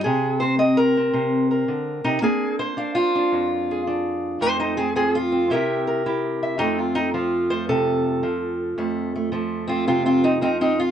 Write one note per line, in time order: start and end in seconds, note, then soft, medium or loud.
0.04 1.12 C3 medium
0.04 0.41 G#4 medium
0.40 0.57 C4 soft
0.40 0.59 C5 medium
0.58 0.96 C4 medium
0.58 0.77 D#5 medium
0.77 1.50 A#4 medium
0.97 2.04 C4 soft
1.13 1.68 C3 medium
1.13 2.21 C5 soft
1.51 2.21 A#4 soft
1.68 2.04 D3 medium
2.04 2.22 C3 medium
2.04 2.22 D#4 medium
2.22 4.39 A#3 medium
2.22 2.76 D4 soft
2.22 2.59 G#4 medium
2.59 3.32 C5 medium
2.77 3.14 D4 medium
2.77 2.94 F5 medium
2.95 3.80 F4 loud
3.15 3.86 D4 soft
3.32 4.40 F2 medium
3.71 4.40 G#4 soft
3.87 4.42 D4 medium
4.41 5.50 F2 medium
4.41 4.78 A3 soft
4.41 4.58 D#4 medium
4.41 4.59 C5 medium
4.59 4.78 D#4 medium
4.59 4.77 C5 medium
4.77 5.51 A3 soft
4.77 4.87 C4 medium
4.77 4.95 G#4 medium
4.95 5.50 F3 medium
4.95 5.02 C4 medium
4.95 5.14 G#4 medium
5.15 5.51 F4 medium
5.32 5.50 C4 soft
5.50 6.59 C3 medium
5.50 6.05 E4 medium
5.50 6.05 G4 medium
5.50 5.86 A#4 medium
5.50 6.41 E5 medium
5.87 6.58 A#4 medium
6.06 6.58 E4 medium
6.06 6.58 G4 medium
6.43 6.58 E5 medium
6.58 8.77 F2 medium
6.58 7.51 A3 soft
6.58 6.97 C4 soft
6.58 6.77 D#4 medium
6.78 6.96 F4 medium
6.95 7.50 C4 soft
6.95 7.13 D#4 medium
7.14 8.22 F3 medium
7.14 7.50 F4 medium
7.50 8.78 A3 soft
7.50 7.69 C5 medium
7.69 8.24 C3 medium
7.69 9.33 A4 medium
8.23 9.31 F3 medium
8.78 10.91 F2 medium
8.78 9.15 A3 soft
9.16 9.32 A3 soft
9.32 10.41 F3 medium
9.32 9.68 A3 soft
9.68 10.91 A3 soft
9.68 9.86 C4 medium
9.68 9.87 F4 medium
9.87 10.42 C3 medium
9.87 10.04 C4 medium
9.87 10.05 F4 medium
10.06 10.23 C4 medium
10.06 10.24 F4 medium
10.24 10.33 C4 medium
10.24 10.41 D#4 medium
10.41 10.91 F3 medium
10.41 10.48 C4 medium
10.41 10.60 D#4 loud
10.61 10.73 C4 medium
10.61 10.79 D#4 medium
10.80 10.91 F4 loud